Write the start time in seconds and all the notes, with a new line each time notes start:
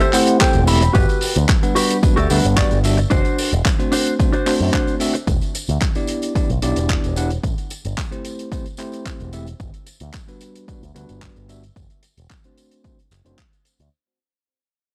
Already playing: E5
0.00 G4 A4 C5, closed hi-hat, tambourine
0.13 A3 C4 E4 G4 C5 F#5, clap, open hi-hat, tambourine
0.27 closed hi-hat, tambourine
0.40 G4 A4 C5 G5, kick, clap, closed hi-hat, tambourine
0.53 E1, closed hi-hat, tambourine
0.67 A3 C4 E4 G4 E5 B5, open hi-hat, tambourine
0.81 muted clean electric guitar stroke, closed hi-hat, tambourine
0.93 G1 F#4 G4 B4, kick, closed hi-hat, tambourine
1.09 closed hi-hat, tambourine
1.21 open hi-hat, tambourine
1.35 D2, closed hi-hat, tambourine
1.48 kick, clap, closed hi-hat, tambourine
1.62 G3 B3 D4 B4 F#5, closed hi-hat, tambourine
1.75 F#4 G4 B4, open hi-hat, tambourine
1.91 closed hi-hat, tambourine
2.03 G3 B3 D4 F#4 B4, muted picked electric bass stroke, kick, closed hi-hat, tambourine
2.16 D2 F#4 G4 A4, closed hi-hat, tambourine
2.30 D2 G3 B3 D4 B4 F#5, open hi-hat, tambourine
2.44 G1, closed hi-hat, tambourine
2.56 F#4 G4 D5, kick, clap, closed hi-hat, tambourine
2.71 G1, closed hi-hat, tambourine
2.84 G3 B3 D4 F#4 E5, open hi-hat, tambourine
2.97 muted clean electric guitar stroke, closed hi-hat, tambourine
3.10 F#1 D4 F#4 C5, kick, closed hi-hat, tambourine
3.25 closed hi-hat, tambourine
3.38 open hi-hat, tambourine
3.53 E1, closed hi-hat, tambourine
3.65 kick, clap, closed hi-hat, tambourine
3.79 A3 C4 D4 F#4 C5, closed hi-hat, tambourine
3.92 D4 F#4 C5, open hi-hat, tambourine
4.06 closed hi-hat, tambourine
4.19 A3 C4 D4 F#4 C5, kick, closed hi-hat, tambourine
4.33 D4 F#4 C5, closed hi-hat, tambourine
4.46 A3 C4 D4 F#4 C5, clap, open hi-hat, tambourine
4.60 F#2, open hi-hat, tambourine
4.73 D4 F#4 C5, kick, clap, tambourine
4.87 closed hi-hat, tambourine
5.00 A3 C4 D4 F#4 E5, open hi-hat, tambourine
5.14 muted clean electric guitar stroke, closed hi-hat, tambourine
5.28 E1, kick, closed hi-hat, tambourine
5.41 closed hi-hat, tambourine
5.55 closed hi-hat, tambourine
5.68 D2, closed hi-hat, tambourine
5.81 kick, clap, closed hi-hat, tambourine
5.95 B3 D4 E4 G4 D5, closed hi-hat, tambourine
6.07 closed hi-hat, tambourine
6.22 closed hi-hat, tambourine
6.35 B3 D4 E4 G4 D5, muted picked electric bass stroke, kick, closed hi-hat, tambourine
6.50 B1, closed hi-hat, tambourine
6.62 B1 B3 D4 E4 G4 D5, closed hi-hat, tambourine
6.76 E1, closed hi-hat, tambourine
6.89 kick, clap, closed hi-hat, tambourine
7.04 E1, closed hi-hat, tambourine
7.16 B3 D4 E4 G4 F#5, closed hi-hat, tambourine
7.31 closed hi-hat, tambourine
7.43 A1, kick, closed hi-hat, tambourine
7.58 closed hi-hat, tambourine
7.70 closed hi-hat, tambourine
7.85 G1, closed hi-hat, tambourine
7.98 kick, clap, closed hi-hat, tambourine
8.11 A3 C4 E4 G4 C5, closed hi-hat, tambourine
8.25 closed hi-hat, tambourine
8.39 closed hi-hat, tambourine
8.52 A3 C4 E4 G4 C5, kick, closed hi-hat, tambourine
8.66 closed hi-hat, tambourine
8.77 A3 C4 E4 G4 C5, clap, closed hi-hat, tambourine
8.92 closed hi-hat, tambourine
9.06 kick, clap, closed hi-hat, tambourine
9.20 E1, closed hi-hat, tambourine
9.33 A3 C4 E4 G4 E5, closed hi-hat, tambourine
9.46 closed hi-hat, tambourine
9.60 G1, kick, closed hi-hat, tambourine
9.74 closed hi-hat, tambourine
9.87 closed hi-hat, tambourine
10.00 D2, closed hi-hat, tambourine
10.13 kick, clap, closed hi-hat, tambourine
10.28 G3 B3 D4 F#4 B4, closed hi-hat, tambourine
10.41 closed hi-hat, tambourine
10.55 closed hi-hat, tambourine
10.68 G3 B3 D4 F#4 B4, muted picked electric bass stroke, kick, closed hi-hat, tambourine
10.83 D2, closed hi-hat, tambourine
10.95 D2 G3 B3 D4 F#4 B4, closed hi-hat, tambourine
11.09 G1, closed hi-hat, tambourine
11.22 kick, clap, closed hi-hat, tambourine
11.36 G1, closed hi-hat, tambourine
11.49 G3 B3 D4 F#4 E5, closed hi-hat, tambourine
11.63 closed hi-hat, tambourine
11.76 F#1, kick, closed hi-hat, tambourine
11.90 closed hi-hat, tambourine
12.03 closed hi-hat, tambourine
12.18 E1, closed hi-hat, tambourine
12.30 kick, clap, closed hi-hat, tambourine
12.44 A3 C4 D4 F#4 C5, closed hi-hat, tambourine
12.58 closed hi-hat, tambourine
12.71 closed hi-hat, tambourine
12.84 A3 C4 D4 F#4 C5, kick, closed hi-hat, tambourine
12.99 closed hi-hat, tambourine
13.11 F#1, clap, closed hi-hat, tambourine
13.25 F#1 A3 C4 D4 F#4 C5, closed hi-hat, tambourine
13.38 kick, clap, closed hi-hat, tambourine
13.53 closed hi-hat, tambourine
13.65 closed hi-hat, tambourine
13.80 D2, closed hi-hat